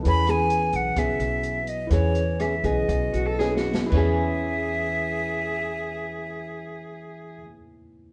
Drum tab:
CC |------------------------|------------------------|x-----------------------|------------------------|
HH |x--x--x--x--x--x--x--x--|x--x--x--x--x--x--------|------------------------|------------------------|
SD |---r--------r-----------|r-----r-----------o-o-o-|------------------------|------------------------|
BD |o-----------o-----------|o--------o--o-----------|o-----------------------|------------------------|